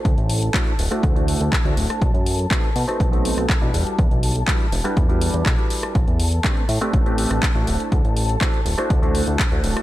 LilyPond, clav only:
\new Staff \with { instrumentName = "Clav" } { \time 4/4 \key d \mixolydian \tempo 4 = 122 <a d' e' fis' c''>4 <a d' e' fis' c''>8 r16 <a d' e' fis' c''>8 <a d' e' fis' c''>4 <a d' e' fis' c''>8. | r4 <a c' dis' fis' b'>8 r16 <a c' dis' fis' b'>8 <a c' dis' fis' b'>4 <g d' e' fis' b'>8.~ | <g d' e' fis' b'>4 <g d' e' fis' b'>8 r16 <g d' e' fis' b'>8 <g d' e' fis' b'>4 <g d' e' fis' b'>8. | r4 <a c' d' g' b'>8 r16 <a c' d' g' b'>8 <a c' d' g' b'>4 <a d' e' fis' c''>8.~ |
<a d' e' fis' c''>4 <a d' e' fis' c''>8 r16 <a d' e' fis' c''>8 <a d' e' fis' c''>4 <a d' e' fis' c''>8. | }